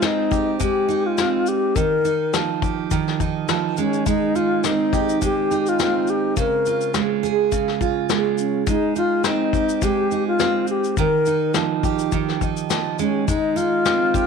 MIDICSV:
0, 0, Header, 1, 4, 480
1, 0, Start_track
1, 0, Key_signature, -4, "major"
1, 0, Tempo, 575816
1, 1469, Time_signature, 4, 2, 24, 8
1, 11893, End_track
2, 0, Start_track
2, 0, Title_t, "Alto flute"
2, 0, Program_c, 0, 73
2, 40, Note_on_c, 0, 63, 81
2, 507, Note_off_c, 0, 63, 0
2, 512, Note_on_c, 0, 67, 83
2, 886, Note_on_c, 0, 65, 73
2, 899, Note_off_c, 0, 67, 0
2, 1236, Note_on_c, 0, 67, 80
2, 1249, Note_off_c, 0, 65, 0
2, 1464, Note_on_c, 0, 70, 93
2, 1476, Note_off_c, 0, 67, 0
2, 1947, Note_off_c, 0, 70, 0
2, 3151, Note_on_c, 0, 61, 70
2, 3386, Note_on_c, 0, 63, 82
2, 3399, Note_off_c, 0, 61, 0
2, 3631, Note_on_c, 0, 65, 85
2, 3644, Note_off_c, 0, 63, 0
2, 3877, Note_on_c, 0, 63, 80
2, 3889, Note_off_c, 0, 65, 0
2, 4353, Note_off_c, 0, 63, 0
2, 4367, Note_on_c, 0, 67, 86
2, 4741, Note_on_c, 0, 65, 76
2, 4753, Note_off_c, 0, 67, 0
2, 5083, Note_on_c, 0, 67, 76
2, 5095, Note_off_c, 0, 65, 0
2, 5316, Note_off_c, 0, 67, 0
2, 5324, Note_on_c, 0, 70, 94
2, 5763, Note_off_c, 0, 70, 0
2, 6997, Note_on_c, 0, 61, 61
2, 7217, Note_off_c, 0, 61, 0
2, 7232, Note_on_c, 0, 63, 80
2, 7454, Note_off_c, 0, 63, 0
2, 7479, Note_on_c, 0, 65, 75
2, 7697, Note_off_c, 0, 65, 0
2, 7715, Note_on_c, 0, 63, 83
2, 8197, Note_on_c, 0, 67, 83
2, 8210, Note_off_c, 0, 63, 0
2, 8561, Note_off_c, 0, 67, 0
2, 8566, Note_on_c, 0, 65, 79
2, 8888, Note_off_c, 0, 65, 0
2, 8919, Note_on_c, 0, 67, 74
2, 9138, Note_off_c, 0, 67, 0
2, 9162, Note_on_c, 0, 70, 93
2, 9602, Note_off_c, 0, 70, 0
2, 10828, Note_on_c, 0, 61, 64
2, 11052, Note_off_c, 0, 61, 0
2, 11071, Note_on_c, 0, 63, 86
2, 11309, Note_on_c, 0, 65, 96
2, 11322, Note_off_c, 0, 63, 0
2, 11893, Note_off_c, 0, 65, 0
2, 11893, End_track
3, 0, Start_track
3, 0, Title_t, "Steel-string acoustic guitar"
3, 0, Program_c, 1, 25
3, 0, Note_on_c, 1, 56, 65
3, 0, Note_on_c, 1, 63, 49
3, 0, Note_on_c, 1, 68, 51
3, 17, Note_on_c, 1, 60, 59
3, 254, Note_off_c, 1, 68, 0
3, 257, Note_on_c, 1, 67, 50
3, 487, Note_off_c, 1, 56, 0
3, 497, Note_on_c, 1, 56, 71
3, 735, Note_off_c, 1, 63, 0
3, 738, Note_on_c, 1, 63, 55
3, 976, Note_off_c, 1, 60, 0
3, 986, Note_on_c, 1, 60, 61
3, 1469, Note_on_c, 1, 51, 66
3, 1516, Note_off_c, 1, 56, 0
3, 1520, Note_off_c, 1, 60, 0
3, 1704, Note_off_c, 1, 63, 0
3, 1707, Note_on_c, 1, 63, 52
3, 1948, Note_on_c, 1, 53, 62
3, 1973, Note_off_c, 1, 67, 0
3, 2187, Note_on_c, 1, 67, 57
3, 2425, Note_off_c, 1, 51, 0
3, 2428, Note_on_c, 1, 51, 73
3, 2668, Note_off_c, 1, 63, 0
3, 2672, Note_on_c, 1, 63, 53
3, 2894, Note_off_c, 1, 53, 0
3, 2904, Note_on_c, 1, 53, 62
3, 3147, Note_off_c, 1, 53, 0
3, 3151, Note_on_c, 1, 56, 69
3, 3381, Note_off_c, 1, 56, 0
3, 3384, Note_on_c, 1, 56, 68
3, 3409, Note_off_c, 1, 67, 0
3, 3624, Note_off_c, 1, 63, 0
3, 3628, Note_on_c, 1, 63, 48
3, 3873, Note_on_c, 1, 60, 60
3, 4113, Note_on_c, 1, 67, 59
3, 4346, Note_off_c, 1, 56, 0
3, 4350, Note_on_c, 1, 56, 70
3, 4584, Note_off_c, 1, 63, 0
3, 4594, Note_on_c, 1, 63, 54
3, 4827, Note_off_c, 1, 60, 0
3, 4831, Note_on_c, 1, 60, 61
3, 5306, Note_off_c, 1, 51, 0
3, 5309, Note_on_c, 1, 49, 70
3, 5364, Note_off_c, 1, 63, 0
3, 5364, Note_off_c, 1, 67, 0
3, 5557, Note_on_c, 1, 65, 56
3, 5785, Note_off_c, 1, 56, 0
3, 5788, Note_on_c, 1, 56, 60
3, 6028, Note_on_c, 1, 68, 56
3, 6255, Note_off_c, 1, 49, 0
3, 6265, Note_on_c, 1, 49, 70
3, 6290, Note_off_c, 1, 60, 0
3, 6497, Note_off_c, 1, 65, 0
3, 6507, Note_on_c, 1, 65, 50
3, 6745, Note_off_c, 1, 56, 0
3, 6749, Note_on_c, 1, 56, 59
3, 7220, Note_off_c, 1, 56, 0
3, 7224, Note_on_c, 1, 56, 71
3, 7280, Note_off_c, 1, 49, 0
3, 7281, Note_off_c, 1, 65, 0
3, 7469, Note_on_c, 1, 63, 50
3, 7709, Note_on_c, 1, 60, 61
3, 7946, Note_off_c, 1, 68, 0
3, 7949, Note_on_c, 1, 67, 54
3, 8182, Note_off_c, 1, 56, 0
3, 8192, Note_on_c, 1, 56, 74
3, 8429, Note_off_c, 1, 63, 0
3, 8433, Note_on_c, 1, 63, 49
3, 8665, Note_off_c, 1, 60, 0
3, 8675, Note_on_c, 1, 60, 57
3, 9156, Note_on_c, 1, 51, 74
3, 9203, Note_off_c, 1, 56, 0
3, 9205, Note_off_c, 1, 60, 0
3, 9394, Note_off_c, 1, 63, 0
3, 9398, Note_on_c, 1, 63, 50
3, 9631, Note_on_c, 1, 53, 57
3, 9656, Note_off_c, 1, 67, 0
3, 9871, Note_on_c, 1, 67, 56
3, 10109, Note_off_c, 1, 51, 0
3, 10112, Note_on_c, 1, 51, 66
3, 10354, Note_off_c, 1, 63, 0
3, 10357, Note_on_c, 1, 63, 52
3, 10578, Note_off_c, 1, 53, 0
3, 10588, Note_on_c, 1, 53, 59
3, 10826, Note_off_c, 1, 53, 0
3, 10830, Note_on_c, 1, 56, 70
3, 11068, Note_off_c, 1, 56, 0
3, 11071, Note_on_c, 1, 56, 66
3, 11096, Note_off_c, 1, 67, 0
3, 11300, Note_off_c, 1, 63, 0
3, 11304, Note_on_c, 1, 63, 57
3, 11551, Note_on_c, 1, 60, 64
3, 11791, Note_on_c, 1, 67, 62
3, 11893, Note_off_c, 1, 51, 0
3, 11893, Note_off_c, 1, 56, 0
3, 11893, Note_off_c, 1, 60, 0
3, 11893, Note_off_c, 1, 63, 0
3, 11893, Note_off_c, 1, 67, 0
3, 11893, End_track
4, 0, Start_track
4, 0, Title_t, "Drums"
4, 18, Note_on_c, 9, 38, 80
4, 20, Note_on_c, 9, 82, 61
4, 102, Note_off_c, 9, 38, 0
4, 103, Note_off_c, 9, 82, 0
4, 263, Note_on_c, 9, 36, 83
4, 268, Note_on_c, 9, 82, 39
4, 346, Note_off_c, 9, 36, 0
4, 352, Note_off_c, 9, 82, 0
4, 501, Note_on_c, 9, 82, 70
4, 505, Note_on_c, 9, 36, 70
4, 584, Note_off_c, 9, 82, 0
4, 588, Note_off_c, 9, 36, 0
4, 750, Note_on_c, 9, 82, 38
4, 833, Note_off_c, 9, 82, 0
4, 983, Note_on_c, 9, 38, 82
4, 983, Note_on_c, 9, 82, 61
4, 1066, Note_off_c, 9, 82, 0
4, 1067, Note_off_c, 9, 38, 0
4, 1220, Note_on_c, 9, 82, 46
4, 1304, Note_off_c, 9, 82, 0
4, 1466, Note_on_c, 9, 36, 91
4, 1467, Note_on_c, 9, 82, 68
4, 1549, Note_off_c, 9, 36, 0
4, 1551, Note_off_c, 9, 82, 0
4, 1709, Note_on_c, 9, 82, 44
4, 1792, Note_off_c, 9, 82, 0
4, 1946, Note_on_c, 9, 38, 83
4, 1948, Note_on_c, 9, 82, 60
4, 2030, Note_off_c, 9, 38, 0
4, 2031, Note_off_c, 9, 82, 0
4, 2186, Note_on_c, 9, 36, 85
4, 2194, Note_on_c, 9, 82, 42
4, 2270, Note_off_c, 9, 36, 0
4, 2277, Note_off_c, 9, 82, 0
4, 2425, Note_on_c, 9, 82, 68
4, 2428, Note_on_c, 9, 36, 70
4, 2509, Note_off_c, 9, 82, 0
4, 2511, Note_off_c, 9, 36, 0
4, 2563, Note_on_c, 9, 38, 30
4, 2647, Note_off_c, 9, 38, 0
4, 2668, Note_on_c, 9, 36, 72
4, 2670, Note_on_c, 9, 82, 38
4, 2751, Note_off_c, 9, 36, 0
4, 2754, Note_off_c, 9, 82, 0
4, 2905, Note_on_c, 9, 82, 57
4, 2906, Note_on_c, 9, 38, 85
4, 2988, Note_off_c, 9, 82, 0
4, 2989, Note_off_c, 9, 38, 0
4, 3142, Note_on_c, 9, 82, 46
4, 3225, Note_off_c, 9, 82, 0
4, 3279, Note_on_c, 9, 82, 38
4, 3362, Note_off_c, 9, 82, 0
4, 3387, Note_on_c, 9, 82, 62
4, 3388, Note_on_c, 9, 36, 85
4, 3470, Note_off_c, 9, 82, 0
4, 3471, Note_off_c, 9, 36, 0
4, 3631, Note_on_c, 9, 82, 47
4, 3714, Note_off_c, 9, 82, 0
4, 3865, Note_on_c, 9, 38, 81
4, 3867, Note_on_c, 9, 82, 63
4, 3949, Note_off_c, 9, 38, 0
4, 3950, Note_off_c, 9, 82, 0
4, 4108, Note_on_c, 9, 36, 83
4, 4113, Note_on_c, 9, 82, 45
4, 4191, Note_off_c, 9, 36, 0
4, 4196, Note_off_c, 9, 82, 0
4, 4244, Note_on_c, 9, 82, 50
4, 4327, Note_off_c, 9, 82, 0
4, 4349, Note_on_c, 9, 82, 70
4, 4350, Note_on_c, 9, 36, 67
4, 4432, Note_off_c, 9, 82, 0
4, 4433, Note_off_c, 9, 36, 0
4, 4595, Note_on_c, 9, 82, 39
4, 4679, Note_off_c, 9, 82, 0
4, 4722, Note_on_c, 9, 82, 50
4, 4806, Note_off_c, 9, 82, 0
4, 4830, Note_on_c, 9, 38, 79
4, 4830, Note_on_c, 9, 82, 63
4, 4913, Note_off_c, 9, 82, 0
4, 4914, Note_off_c, 9, 38, 0
4, 5064, Note_on_c, 9, 82, 48
4, 5147, Note_off_c, 9, 82, 0
4, 5307, Note_on_c, 9, 82, 61
4, 5309, Note_on_c, 9, 36, 85
4, 5390, Note_off_c, 9, 82, 0
4, 5393, Note_off_c, 9, 36, 0
4, 5550, Note_on_c, 9, 82, 44
4, 5633, Note_off_c, 9, 82, 0
4, 5676, Note_on_c, 9, 82, 42
4, 5759, Note_off_c, 9, 82, 0
4, 5786, Note_on_c, 9, 38, 87
4, 5787, Note_on_c, 9, 82, 66
4, 5869, Note_off_c, 9, 38, 0
4, 5870, Note_off_c, 9, 82, 0
4, 6038, Note_on_c, 9, 82, 41
4, 6122, Note_off_c, 9, 82, 0
4, 6268, Note_on_c, 9, 82, 73
4, 6269, Note_on_c, 9, 36, 74
4, 6352, Note_off_c, 9, 82, 0
4, 6353, Note_off_c, 9, 36, 0
4, 6400, Note_on_c, 9, 38, 28
4, 6484, Note_off_c, 9, 38, 0
4, 6509, Note_on_c, 9, 36, 72
4, 6513, Note_on_c, 9, 82, 38
4, 6592, Note_off_c, 9, 36, 0
4, 6597, Note_off_c, 9, 82, 0
4, 6747, Note_on_c, 9, 82, 58
4, 6748, Note_on_c, 9, 38, 79
4, 6831, Note_off_c, 9, 82, 0
4, 6832, Note_off_c, 9, 38, 0
4, 6985, Note_on_c, 9, 82, 46
4, 7069, Note_off_c, 9, 82, 0
4, 7228, Note_on_c, 9, 36, 95
4, 7228, Note_on_c, 9, 82, 65
4, 7311, Note_off_c, 9, 36, 0
4, 7311, Note_off_c, 9, 82, 0
4, 7466, Note_on_c, 9, 82, 46
4, 7550, Note_off_c, 9, 82, 0
4, 7702, Note_on_c, 9, 38, 88
4, 7703, Note_on_c, 9, 82, 67
4, 7785, Note_off_c, 9, 38, 0
4, 7786, Note_off_c, 9, 82, 0
4, 7945, Note_on_c, 9, 36, 81
4, 7953, Note_on_c, 9, 82, 43
4, 8028, Note_off_c, 9, 36, 0
4, 8036, Note_off_c, 9, 82, 0
4, 8077, Note_on_c, 9, 82, 56
4, 8161, Note_off_c, 9, 82, 0
4, 8184, Note_on_c, 9, 82, 64
4, 8186, Note_on_c, 9, 36, 76
4, 8267, Note_off_c, 9, 82, 0
4, 8269, Note_off_c, 9, 36, 0
4, 8429, Note_on_c, 9, 82, 40
4, 8512, Note_off_c, 9, 82, 0
4, 8664, Note_on_c, 9, 82, 63
4, 8665, Note_on_c, 9, 38, 79
4, 8748, Note_off_c, 9, 82, 0
4, 8749, Note_off_c, 9, 38, 0
4, 8896, Note_on_c, 9, 82, 47
4, 8980, Note_off_c, 9, 82, 0
4, 9036, Note_on_c, 9, 82, 40
4, 9120, Note_off_c, 9, 82, 0
4, 9143, Note_on_c, 9, 82, 60
4, 9145, Note_on_c, 9, 36, 94
4, 9227, Note_off_c, 9, 82, 0
4, 9228, Note_off_c, 9, 36, 0
4, 9384, Note_on_c, 9, 82, 46
4, 9467, Note_off_c, 9, 82, 0
4, 9620, Note_on_c, 9, 38, 92
4, 9621, Note_on_c, 9, 82, 67
4, 9703, Note_off_c, 9, 38, 0
4, 9705, Note_off_c, 9, 82, 0
4, 9864, Note_on_c, 9, 36, 89
4, 9868, Note_on_c, 9, 82, 43
4, 9947, Note_off_c, 9, 36, 0
4, 9951, Note_off_c, 9, 82, 0
4, 9994, Note_on_c, 9, 82, 52
4, 10077, Note_off_c, 9, 82, 0
4, 10101, Note_on_c, 9, 82, 67
4, 10105, Note_on_c, 9, 36, 74
4, 10185, Note_off_c, 9, 82, 0
4, 10189, Note_off_c, 9, 36, 0
4, 10238, Note_on_c, 9, 38, 29
4, 10322, Note_off_c, 9, 38, 0
4, 10347, Note_on_c, 9, 36, 74
4, 10349, Note_on_c, 9, 82, 42
4, 10430, Note_off_c, 9, 36, 0
4, 10432, Note_off_c, 9, 82, 0
4, 10476, Note_on_c, 9, 82, 50
4, 10560, Note_off_c, 9, 82, 0
4, 10587, Note_on_c, 9, 82, 66
4, 10588, Note_on_c, 9, 38, 81
4, 10671, Note_off_c, 9, 38, 0
4, 10671, Note_off_c, 9, 82, 0
4, 10826, Note_on_c, 9, 82, 43
4, 10909, Note_off_c, 9, 82, 0
4, 11070, Note_on_c, 9, 36, 89
4, 11072, Note_on_c, 9, 82, 64
4, 11154, Note_off_c, 9, 36, 0
4, 11155, Note_off_c, 9, 82, 0
4, 11313, Note_on_c, 9, 82, 50
4, 11397, Note_off_c, 9, 82, 0
4, 11549, Note_on_c, 9, 38, 95
4, 11551, Note_on_c, 9, 82, 66
4, 11633, Note_off_c, 9, 38, 0
4, 11634, Note_off_c, 9, 82, 0
4, 11789, Note_on_c, 9, 36, 83
4, 11794, Note_on_c, 9, 82, 45
4, 11873, Note_off_c, 9, 36, 0
4, 11877, Note_off_c, 9, 82, 0
4, 11893, End_track
0, 0, End_of_file